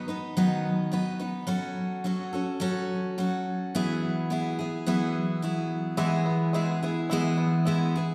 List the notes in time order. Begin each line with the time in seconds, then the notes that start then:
0.08 B3 D#4 B4
0.37 D#3 F#3 B3 D#4 B4
0.92 F#3 B3 D#4 B4
1.19 B3 D#4 B4
1.47 F#3 C#4 F#4 A4
2.04 F#3 C#4 F#4 A4
2.33 C#4 F#4 A4
2.60 F#3 C#4 F#4 A4
3.18 F#3 C#4 F#4 A4
3.75 E3 F#3 B3 E4 G#4
4.30 F#3 B3 E4 G#4
4.59 B3 E4 G#4
4.86 E3 F#3 B3 E4 G#4
5.42 F#3 B3 E4 G#4
5.97 E3 G#3 B3 E4 G#4
6.26 B3
6.53 G#3 B3 E4 G#4
6.83 B3 E4 G#4
7.10 E3 G#3 B3 E4 G#4
7.38 B3
7.65 G#3 B3 E4 G#4
7.96 B3 E4 G#4